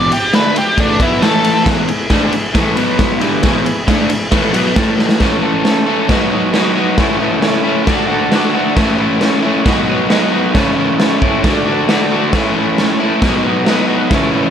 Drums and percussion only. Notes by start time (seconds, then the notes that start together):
0.12 ride
0.33 snare, ride
0.56 ride
0.78 kick, ride
1.00 kick, ride
1.22 snare, ride
1.44 ride
1.66 kick, snare, ride
1.88 ride
2.10 kick, snare, ride
2.32 ride
2.55 kick, snare, ride
2.77 ride
2.99 kick, snare, ride
3.21 ride
3.43 kick, snare, ride
3.66 ride
3.88 kick, snare, ride
4.10 ride
4.32 kick, snare, ride
4.54 ride
4.76 kick, snare, ride
4.99 snare
5.09 snare
5.20 kick, snare, crash
5.65 snare, crash
6.09 kick, snare, crash
6.54 snare, crash
6.98 kick, snare, crash
7.42 snare, crash
7.87 kick, snare, crash
8.32 snare, crash
8.76 kick, snare, crash
9.21 snare, crash
9.66 kick, snare, crash
10.10 snare, crash
10.55 kick, snare, crash
11.00 snare, crash
11.22 kick
11.44 kick, snare, crash
11.89 snare, crash
12.33 kick, snare, crash
12.78 snare, crash
13.22 kick, snare, crash
13.66 snare, crash
14.11 kick, snare, crash